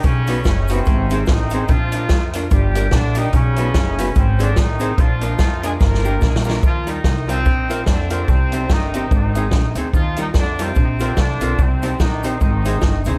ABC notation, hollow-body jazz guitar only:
X:1
M:4/4
L:1/8
Q:"Swing" 1/4=145
K:Eb
V:1 name="Hollow-body jazz guitar"
z [=B,^D^F=B] z [B,DFB] z [CEAc] z [CEAc] | z [B,DFB] z [B,DFB] z [B,DGB] z [B,DGB] | z [=B,^D^F=B] z [B,DFB] z [CEAc] z [CEAc] | z [B,DFB] z [B,DFB] z [B,DGB] z [B,DFB] |
z [G,EFB] z [G,EFB] z [B,FBc] z [B,FBc] | z [CEGc] z [CEGc] z [CEAc] z [CEAc] | z [G,EFB] z [G,EFB] z [CFBc] z [CFBc] | z [CEGc] z [CEGc] z [CEAc] z [CEAc] |]